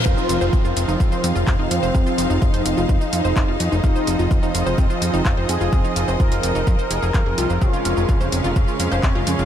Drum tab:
HH |--o---o---o---o-|--o--oo---o---o-|--o---o---o---o-|--o--oo---o---o-|
SH |xxxxxxxxxxxxx-xx|xxxxxxxxxxxxx-xx|xxxxxxxxxxxxx-xx|xxxxxxxxxxxxx-xx|
CP |------------x---|------------x---|------------x---|------------x---|
BD |o---o---o---o---|o---o---o---o---|o---o---o---o---|o---o---o---o---|

HH |--o---o---o---o-|
SH |xxxxxxxxxxxxx-xx|
CP |------------x---|
BD |o---o---o---o---|